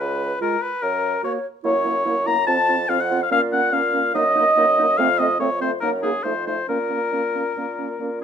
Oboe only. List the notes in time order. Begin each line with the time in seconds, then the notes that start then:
0.00 B4
0.42 A#4
0.62 B4
0.82 A#4
1.24 C#5
1.66 C#5
2.27 A#5
2.47 A5
2.89 F5
3.01 F#5
3.23 F5
3.32 F5
3.53 F#5
3.73 F5
4.15 D#5
4.97 F5
5.18 D#5
5.40 C#5
5.61 C5
5.80 A#4
6.03 G#4
6.23 C5
6.47 C5
6.69 A#4